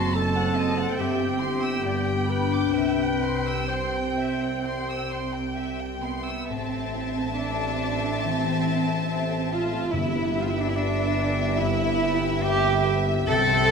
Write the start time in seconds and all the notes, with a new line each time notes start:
Already playing: F#1 F#2 A3 C4 F#4 A5 C6
0.15 D#4 A4 A5
0.36 F#5
0.56 C5 D#5
0.77 F#5
0.97 G1 G2 G4 E5 G5
1.19 G5
1.39 C4 E4 C6
1.64 E6
1.85 G2 B3 D5
2.06 G5
2.29 B3 D4 B4 B5
2.53 D6
2.74 C2 C3 C4 B4 E5
3.00 G5
3.22 C4 C6
3.46 E6
3.67 G4 C5 C6
3.95 G5
4.17 E5
4.42 G5
4.64 G3 C6
4.90 E6
5.11 C4 C6
5.34 G5
5.56 G4 E5
5.80 G5
6.02 B3 E5 C6
6.27 E6
6.49 A1 A2 C4 E5 A5
6.73 A3
6.95 E4
7.17 A4
7.37 D4 E5
7.59 A4
7.81 E4
8.02 A3
8.24 E3 C4
8.45 A3
8.66 E4
8.88 A4
9.09 C4 E5
9.30 A4
9.52 E4 F4
9.72 A3
9.93 G1 G2 B3 E4 E5
10.16 B3
10.35 G4
10.42 F4
10.51 E4
10.57 D4 B4
10.70 E4
10.76 D4 E5
10.99 B4
11.19 G4
11.40 E4
11.61 G2 E4
11.82 B3
12.04 G4
12.24 B4
12.45 G4 E5
12.66 B4
12.87 G4
13.08 E4
13.28 C2 C3 C4 A4 G5
13.50 C4